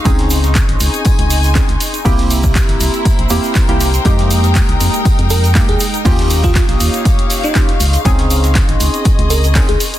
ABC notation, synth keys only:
X:1
M:4/4
L:1/16
Q:"Swing 16ths" 1/4=120
K:Ab
V:1 name="Synth keys"
[CDEA]12 [CDEA] z3 | [B,C=EG]8- [B,CEG]2 [B,CEG]3 [B,CEG]2 z | [A,B,EG]12 [A,B,EG] z3 | [B,DFG]12 [B,DFG] z3 |
[CDEA]12 [CDEA] z3 |]